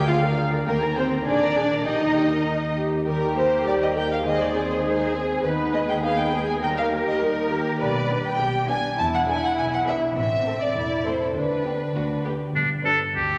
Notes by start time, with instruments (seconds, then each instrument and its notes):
Already playing: double bass section D2, harp D3 G#3 A#3 G#4
0.08 cello section F4, viola section G#4 F5, violin section F5
0.23 viola section A#4 D5
0.28 harp A#4
0.38 viola section G#4 F5
0.48 harp F4
0.52 viola section A#4 D5
0.66 double bass section D#2, harp D#3, cello section A#3, viola section G4 G5, violin section A#4
0.82 viola section A#4 A#5
0.87 harp A#3
0.96 cello section C4, viola section G4 G5, violin section C5
1.07 harp G4 A#4
1.12 viola section A#4 A#5
1.26 double bass section A#1, harp A#2, cello section D4, viola section G#4 G#5, violin section D5
1.41 viola section A#4 A#5
1.47 harp A#3
1.56 viola section G#4 G#5
1.66 harp G#4 A#4
1.71 viola section A#4 A#5
1.85 double bass section D#2, harp D#3, cello section D#4, viola section G4 G5, violin section D#5
2.00 viola section A#4 A#5
2.07 harp D#4
2.15 viola section G4 G5
2.27 harp A#3, viola section A#4 A#5
2.45 viola section A#4
2.67 harp A#4
2.76 viola section G4
2.87 harp G4
3.05 double bass section D#2, harp D#3, viola section G3 G4, cello section G4, violin section A#4, marimba A#4
3.26 harp A#3
3.35 viola section A#3 A#4, violin section G4 C5, marimba C5
3.46 harp D#4
3.65 viola section G3 G4, violin section A#4 D5, marimba D5
3.82 harp A#4, violin section D#5, marimba D#5
3.95 viola section A#3 A#4, violin section G4 G5, marimba G5
4.05 harp G4
4.12 violin section F5, marimba F5
4.24 harp D#3, viola section G#3 D#4, cello section G#4, violin section C5 D#5, marimba D#5
4.41 harp C4, violin section D5, marimba D5
4.54 viola section C4, violin section G#4
4.64 harp D#4
4.70 violin section C5, marimba C5
4.83 viola section G#3 D#4, harp G#4, violin section G#4 C5, marimba G#4
5.04 harp C5
5.14 viola section C4, violin section G#4
5.43 double bass section D#2, harp D#3, viola section B3 D#4, violin section B4, cello section B4, marimba B4
5.64 harp G#3
5.72 viola section G#3 B3, violin section G#4 D#5, marimba D#5
5.84 harp D#4
5.88 violin section G5, marimba G5
6.02 viola section B3 D#4, cello section G#4, harp G#4, violin section B4 F5, marimba F5
6.18 violin section G5, marimba G5
6.23 harp D#4
6.31 viola section G#3 B3, violin section G#4
6.48 violin section G#5, marimba G#5
6.61 harp D#3, viola section G3 D#4, cello section A#4, violin section A#4 G5, marimba G5
6.77 violin section F5, marimba F5
6.82 harp A#3
6.91 viola section A#3 G4, violin section G4
7.02 harp D#4
7.07 violin section D#5, marimba D#5
7.20 viola section G3 D#4, violin section A#4, marimba A#4
7.41 harp A#4
7.50 viola section A#3 G4, violin section G4
7.61 harp G4
7.80 double bass section B1, harp B2, cello section B4, violin section D5, marimba D5
8.00 harp G3
8.09 viola section B3 D4, violin section G4
8.20 harp B3
8.25 violin section G5, marimba G5
8.39 double bass section B1, harp D4, cello section G4
8.59 harp G4
8.68 viola section B3 D4, cello section D4, violin section G4 G#5, marimba G#5
8.78 harp D4
8.98 harp E2, double bass section E2, cello section E4, marimba A5, violin section A5
9.14 violin section F#5, marimba F#5
9.18 harp B2
9.28 viola section B3 D4, violin section G#4 G#5, marimba G#5
9.38 harp B3
9.43 violin section F#5, marimba F#5
9.57 double bass section B1, harp D4, violin section G#5, marimba G#5
9.73 violin section F#5, marimba F#5
9.77 harp G#4
9.87 viola section B3 D4, violin section G#4 E5, marimba E5
9.97 harp D4
10.16 double bass section A1, harp A2, cello section C4, violin section E5, marimba E5
10.36 harp E3
10.46 viola section A3 C4, violin section A4
10.56 harp A3
10.61 violin section D5, marimba D5
10.76 double bass section E1, harp C4, cello section E4
10.96 harp A4
11.05 viola section A3 C4, violin section A4 C5, marimba C5
11.16 harp C4
11.20 violin section A4, marimba A4
11.35 double bass section D2, harp D3, cello section D4, violin section B4, marimba B4
11.56 harp D4
11.65 viola section B3 D4, violin section G4
11.76 harp D4 G4
11.95 double bass section D2, harp D3, violin section F#4
12.16 harp D4
12.25 viola section A3 D4, violin section G4
12.36 harp D4 F#4
12.55 double bass section G1, cello section G2, harp G2, oboe D4
12.84 viola section G3, harp B3, violin section D4 B4, oboe A4
13.15 cello section D2, double bass section D2, harp G4, oboe G4